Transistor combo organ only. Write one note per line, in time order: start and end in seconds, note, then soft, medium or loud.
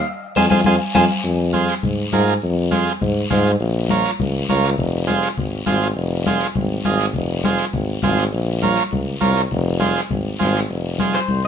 0.36 0.46 F4 loud
0.36 0.46 G#4 medium
0.36 0.46 C5 medium
0.51 0.61 F4 medium
0.51 0.61 G#4 medium
0.51 0.61 C5 loud
0.66 0.76 F4 medium
0.66 0.76 G#4 medium
0.66 0.76 C5 medium
0.96 1.05 F4 loud
0.96 1.05 G#4 medium
0.96 1.05 C5 medium
1.53 1.74 F4 medium
1.53 1.75 G#4 medium
1.53 1.75 C5 medium
2.13 2.34 F4 medium
2.13 2.34 G#4 medium
2.13 2.34 A#4 medium
2.71 2.92 F4 medium
2.71 2.93 G#4 medium
2.71 2.93 C5 medium
3.30 3.51 F4 medium
3.30 3.52 G#4 medium
3.30 3.52 C5 medium
3.90 4.11 F4 medium
3.90 4.11 A#4 medium
3.90 4.11 C#5 medium
4.49 4.70 F4 medium
4.49 4.70 A#4 medium
4.49 4.70 C#5 medium
5.07 5.29 F4 medium
5.07 5.29 G#4 medium
5.07 5.29 C5 loud
5.66 5.88 F4 medium
5.66 5.88 G#4 medium
5.66 5.88 C5 medium
6.26 6.47 F4 medium
6.26 6.47 G#4 medium
6.26 6.47 C5 medium
6.85 7.06 F4 medium
6.85 7.06 G#4 medium
6.85 7.06 D#5 medium
7.45 7.65 F4 medium
7.45 7.65 G#4 medium
7.45 7.65 C5 medium
8.03 8.24 F4 medium
8.03 8.24 G#4 medium
8.03 8.24 C5 loud
8.62 8.83 F4 medium
8.62 8.83 A#4 medium
8.62 8.84 C#5 medium
9.21 9.42 F4 medium
9.21 9.42 A#4 medium
9.21 9.42 C#5 medium
9.80 10.01 F4 medium
9.80 10.01 G#4 medium
9.80 10.01 C5 medium
10.39 10.60 F4 medium
10.39 10.60 G#4 medium
10.39 10.60 C5 medium
10.99 11.20 F4 medium
10.99 11.20 G#4 medium
10.99 11.20 C5 medium